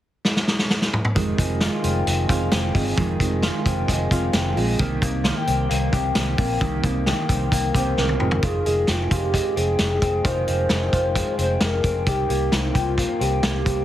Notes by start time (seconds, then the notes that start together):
0.25 snare
0.36 snare
0.47 snare
0.59 snare
0.70 snare
0.82 snare
0.94 mid tom
1.05 mid tom
1.15 F1 F2 C3 D#3 G#3 C4 F4, kick, closed hi-hat
1.37 F1 D#3 G#3 C4 F4, kick, closed hi-hat
1.60 D#3 G#3 C4 F4, snare, closed hi-hat
1.84 F1 C4, closed hi-hat
2.06 F1 G#3, closed hi-hat
2.28 F1 D#3 G#3 C4 F4, kick, closed hi-hat
2.51 F1 D#3 G#3 C4 F4, snare, closed hi-hat
2.73 G1 D#3 G#3 C4 F4, kick, open hi-hat
2.95 F1 F2 C3 D#3 G#3 C4 F4, kick, closed hi-hat
3.18 F1 D#3 G#3 C4 F4, kick, closed hi-hat
3.42 D#3 G#3 C4 F4, snare, closed hi-hat
3.65 F1 C4, kick, closed hi-hat
3.88 F1 G#3, kick, closed hi-hat
4.09 F1 D#3 G#3 C4 F4, kick, closed hi-hat
4.32 F1 D#3 G#3 C4 F4, snare, closed hi-hat
4.56 A#1 D#3 G#3 C4 F4, open hi-hat
4.78 C2 C3 D#3 A#3 C4 G4, kick, closed hi-hat
5.02 C2 A#3 C4 G4, kick, closed hi-hat
5.24 D#3 A#3 C4 F4 G4, snare, closed hi-hat
5.36 G4
5.47 C2 C4, closed hi-hat
5.69 C2 A#3, closed hi-hat
5.92 C2 A#3 C4 G4, kick, closed hi-hat
6.14 C2 D#3 A#3 C4 G4, snare, closed hi-hat
6.38 A#1 A#3 C4 G4, kick, open hi-hat
6.60 C2 C3 D#3 A#3 C4 G4, kick, closed hi-hat
6.83 C2 A#3 C4 G4, kick, closed hi-hat
7.06 D#3 A#3 C4 G4, snare, closed hi-hat
7.29 C2 C4, kick, closed hi-hat
7.52 C2 A#3, kick, closed hi-hat
7.74 C2 A#3 C4 G4 C5, kick, closed hi-hat
7.96 C2 D#3 A#3 C4 G4 A#4, snare
8.09 high tom
8.19 F1 D#3 G#3 C4 F4, mid tom
8.31 floor tom
8.42 F1 D#3 F4 G#4, kick, closed hi-hat
8.65 F1 G#3 G#4, closed hi-hat
8.87 F1 C4 F4, snare, closed hi-hat
9.11 F1 F4 G4, kick, closed hi-hat
9.33 G#3, kick, closed hi-hat
9.56 F1 C4 G#4, closed hi-hat
9.79 F1 G#3, snare, closed hi-hat
10.02 F1 C4, kick, closed hi-hat
10.24 F1 D#3 F4 C5, kick, closed hi-hat
10.47 F1 G#3, closed hi-hat
10.69 F1 C4, snare, closed hi-hat
10.93 F1 F4, kick, closed hi-hat
11.15 G#3, kick, closed hi-hat
11.38 F1 C4 C5, closed hi-hat
11.60 F1 G#3 A#4, snare, closed hi-hat
11.83 F1 C4, kick, closed hi-hat
12.06 C2 D#3 G4, kick, closed hi-hat
12.29 C2 A#3 G4, closed hi-hat
12.52 C2 C4 D#4, snare, closed hi-hat
12.74 C2 F4 G4, kick, closed hi-hat
12.97 A#3, kick, closed hi-hat
13.20 C2 C4 G4, closed hi-hat
13.43 C2 A#3, snare, closed hi-hat
13.65 C2 C4, kick, closed hi-hat